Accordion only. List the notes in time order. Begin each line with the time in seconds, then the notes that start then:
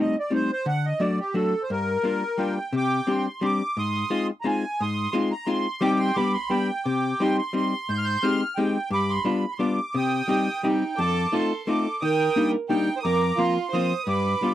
0.00 D#5
0.19 D5
0.34 C5
0.53 C5
0.68 F#5
0.85 D#5
1.00 D5
1.19 G4
1.35 A4
1.63 C5
1.71 A#4
2.38 G5
2.76 G5 D6
3.10 C6
3.45 D6
3.78 C6 D#6
4.41 A#5
4.47 G#5
4.81 C6 D#6
5.11 C6
5.32 A#5
5.46 C6
5.81 G5 D6
5.99 C6
6.15 B5 D6
6.34 C6
6.50 G5
6.85 G5 D6
7.21 C6
7.38 C6
7.56 C6
7.90 C6 G6
7.98 F6
8.05 G6
8.23 F6
8.56 G5
8.92 B5 D6
9.10 C6
9.26 B5
9.52 C6
9.59 D6
9.96 G5 D#6
10.63 G5
10.97 A5 D6
11.33 C6
11.67 D6
12.01 G5 D#6
12.70 G5
12.99 D#6
13.04 A#5 D6
13.40 C6
13.74 D#6
14.08 B5 D6